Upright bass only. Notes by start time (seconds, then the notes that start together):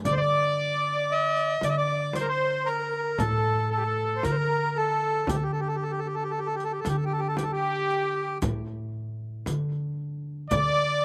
0.06 D3
1.62 D3
3.19 A2
4.25 D3
5.29 D3
6.86 D3
8.42 A2
9.47 D3
10.52 D3